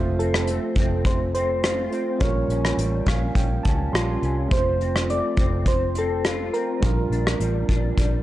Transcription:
Already playing: F1 F3 A3 C4 F4 C5
0.19 C4 A4, closed hi-hat
0.34 cross-stick
0.47 A3, closed hi-hat
0.75 F1 C4, kick, closed hi-hat
1.05 A3 C5, kick, closed hi-hat
1.34 C4 C5, closed hi-hat
1.64 F4, cross-stick, closed hi-hat
1.90 A3 C4 F4 C5, closed hi-hat
2.19 A#1 A#2 G3 C#4 F4 C#5, kick, closed hi-hat
2.24 A#4
2.48 A#1 C#4, closed hi-hat
2.65 cross-stick
2.77 A1 G3, closed hi-hat
3.06 A#1 C#4 F5, kick, cross-stick, closed hi-hat
3.35 A#1 G3 G5, kick, closed hi-hat
3.63 C#2 C#4 A5, kick, closed hi-hat
3.92 A#1 G3 C#4 F4 G4 C6, cross-stick, closed hi-hat
4.22 C2 C#4, closed hi-hat
4.49 F3 A3 C4 F4 C5, kick, closed hi-hat
4.54 C5
4.81 C4, closed hi-hat
4.96 cross-stick
5.10 A3 D5, closed hi-hat
5.37 F1 C4, kick, closed hi-hat
5.66 C5, kick, closed hi-hat
5.95 C4 A4, closed hi-hat
6.25 F4, cross-stick, closed hi-hat
6.54 C4 A#4, closed hi-hat
6.80 A#1 A#2 G3 D4 F4, kick, closed hi-hat
6.85 A#4
7.10 A#1 D4, closed hi-hat
7.27 cross-stick
7.40 A1 G3, closed hi-hat
7.69 A#1 D4, kick, closed hi-hat
7.97 A#1 G3, kick, closed hi-hat

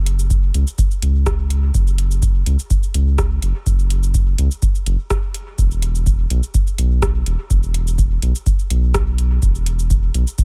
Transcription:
Already playing: F#1
0.06 closed hi-hat
0.19 cabasa
0.30 kick, cabasa
0.54 C#2, closed hi-hat
0.67 cabasa
0.78 kick, cabasa
0.91 cabasa
1.02 C#2, closed hi-hat
1.26 kick, cross-stick, cabasa
1.50 closed hi-hat
1.74 F#1, kick, cabasa
1.87 cabasa
1.98 closed hi-hat
2.11 cabasa
2.22 kick, cabasa
2.46 C#2, closed hi-hat
2.59 cabasa
2.70 kick, cabasa
2.83 cabasa
2.94 C#2, closed hi-hat
3.18 kick, cross-stick, cabasa
3.42 F#1, closed hi-hat
3.66 F#1, kick, cabasa
3.79 cabasa
3.90 closed hi-hat
4.03 cabasa
4.14 kick, cabasa
4.38 C#2, closed hi-hat
4.51 cabasa
4.62 kick, cabasa
4.75 cabasa
4.86 F#1, closed hi-hat
5.10 kick, cross-stick, cabasa
5.34 closed hi-hat
5.58 E1, kick, cabasa
5.71 cabasa
5.82 closed hi-hat
5.95 cabasa
6.06 kick, cabasa
6.30 B1, closed hi-hat
6.43 cabasa
6.54 kick, cabasa
6.67 cabasa
6.78 B1, closed hi-hat
7.02 kick, cross-stick, cabasa
7.26 E1, closed hi-hat
7.50 E1, kick, cabasa
7.63 cabasa
7.74 closed hi-hat
7.87 cabasa
7.98 kick, cabasa
8.22 B1, closed hi-hat
8.35 cabasa
8.46 kick, cabasa
8.59 cabasa
8.70 B1, closed hi-hat
8.94 kick, cross-stick, cabasa
9.18 closed hi-hat
9.42 E1, kick, cabasa
9.55 cabasa
9.66 closed hi-hat
9.79 cabasa
9.90 kick, cabasa
10.14 B1, closed hi-hat
10.27 cabasa
10.38 kick, cabasa

